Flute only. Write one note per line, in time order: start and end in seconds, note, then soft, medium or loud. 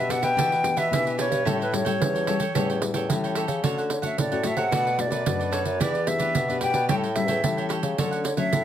0.00 0.12 E5 medium
0.11 0.25 F#5 medium
0.24 0.79 G5 loud
0.78 1.19 E5 medium
1.20 1.57 C#5 medium
1.62 1.75 B4 medium
1.74 2.82 C#5 medium
3.92 3.98 C#5 medium
4.05 4.17 E5 medium
4.20 4.48 D5 medium
4.47 4.60 E5 medium
4.58 5.02 F#5 medium
5.00 5.54 D5 medium
5.53 5.82 C#5 medium
5.81 6.09 D5 medium
6.07 6.61 E5 loud
6.62 6.87 G5 medium
6.89 6.95 G5 medium
7.15 7.66 E5 medium
8.24 8.36 C#5 medium
8.37 8.64 E5 medium